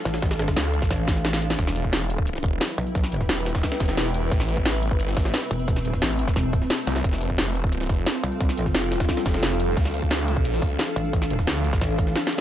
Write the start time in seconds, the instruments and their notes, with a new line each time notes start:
Already playing: synth drone F3 D4 A4 F5, ambient pad D4 A4 F5
0.05 wobble bass A1, snare, closed hi-hat
0.14 snare, closed hi-hat
0.22 kick, snare, closed hi-hat
0.31 snare, closed hi-hat
0.39 snare, closed hi-hat
0.48 kick, snare, closed hi-hat
0.56 detuned saw bass D2, snare, closed hi-hat
0.74 closed hi-hat
0.82 kick, snare
0.91 wobble bass A1, kick, snare, closed hi-hat
1.08 kick, snare, closed hi-hat
1.16 snare
1.25 snare, closed hi-hat
1.33 snare
1.42 closed hi-hat
1.50 snare
1.59 detuned saw bass E1, synth drone G3 E4 B4 E5, ambient pad E4, kick, closed hi-hat
1.67 snare
1.76 closed hi-hat
1.82 ambient pad B4, kick
1.93 snare, closed hi-hat
2.07 ambient pad G5, closed hi-hat
2.18 kick
2.27 closed hi-hat
2.35 snare
2.44 detuned saw bass E1, kick, closed hi-hat
2.61 snare, closed hi-hat
2.70 snare
2.78 wobble bass B1, closed hi-hat, open hi-hat
2.87 closed hi-hat
2.95 kick, closed hi-hat
3.04 snare, closed hi-hat
3.12 closed hi-hat
3.21 kick, snare
3.29 detuned saw bass E1, snare, closed hi-hat
3.46 snare, closed hi-hat
3.55 kick, snare, closed hi-hat
3.63 kick, snare, closed hi-hat
3.72 snare, closed hi-hat
3.80 detuned saw bass E1, kick, snare, closed hi-hat
3.89 snare, closed hi-hat
3.97 detuned saw bass E1, snare, closed hi-hat
4.06 snare
4.14 closed hi-hat, open hi-hat
4.31 detuned saw bass A1, synth drone A3 C4, ambient pad C4, kick, closed hi-hat
4.40 snare
4.48 closed hi-hat
4.57 kick
4.66 snare, closed hi-hat
4.83 closed hi-hat
4.90 detuned saw bass G#1, kick
4.98 ambient pad A5, closed hi-hat
5.08 snare
5.17 detuned saw bass A1, kick, snare, closed hi-hat
5.25 snare, closed hi-hat
5.34 snare, closed hi-hat
5.42 snare
5.51 wobble bass E1, closed hi-hat, open hi-hat
5.59 closed hi-hat
5.68 kick, closed hi-hat
5.76 snare, closed hi-hat
5.85 closed hi-hat
5.93 kick, snare
6.02 detuned saw bass A1, snare, closed hi-hat
6.19 closed hi-hat
6.28 kick, snare
6.36 wobble bass E1, kick, snare, closed hi-hat
6.53 kick, closed hi-hat
6.62 snare
6.70 snare, closed hi-hat
6.87 detuned saw bass C2, snare, closed hi-hat, open hi-hat
6.96 snare, closed hi-hat
7.04 detuned saw bass F1, synth drone G3 A4 F5, ambient pad F4, kick, closed hi-hat
7.13 snare
7.21 ambient pad A4, closed hi-hat
7.30 kick
7.38 snare, closed hi-hat
7.55 closed hi-hat
7.64 ambient pad G5, kick
7.72 closed hi-hat
7.81 snare
7.89 detuned saw bass F1, kick, closed hi-hat
8.06 snare, closed hi-hat
8.15 snare
8.24 wobble bass C2, closed hi-hat, open hi-hat
8.32 closed hi-hat
8.41 kick, closed hi-hat
8.49 snare, closed hi-hat
8.58 closed hi-hat
8.66 kick, snare
8.75 detuned saw bass F1, snare, closed hi-hat
8.92 snare, closed hi-hat
9.00 kick, snare, closed hi-hat
9.09 kick, snare, closed hi-hat
9.17 snare, closed hi-hat
9.26 detuned saw bass F1, kick, snare, closed hi-hat
9.34 snare, closed hi-hat
9.43 detuned saw bass F1, snare, closed hi-hat
9.51 snare
9.60 closed hi-hat, open hi-hat
9.77 detuned saw bass D2, synth drone F3 D4, ambient pad D4, kick, closed hi-hat
9.85 snare
9.91 ambient pad F5, closed hi-hat
10.02 kick
10.11 snare, closed hi-hat
10.28 closed hi-hat
10.37 kick
10.45 closed hi-hat
10.54 snare
10.62 detuned saw bass D2, kick, closed hi-hat
10.79 snare, closed hi-hat
10.88 snare
10.96 wobble bass A1, closed hi-hat, open hi-hat
11.05 closed hi-hat
11.13 kick, closed hi-hat
11.22 snare, closed hi-hat
11.30 closed hi-hat
11.39 kick, snare
11.47 detuned saw bass D2, snare, closed hi-hat
11.64 closed hi-hat
11.73 kick, snare
11.81 wobble bass A1, kick, snare, closed hi-hat
11.99 kick, closed hi-hat
12.07 snare
12.16 snare, closed hi-hat
12.27 snare
12.33 closed hi-hat, open hi-hat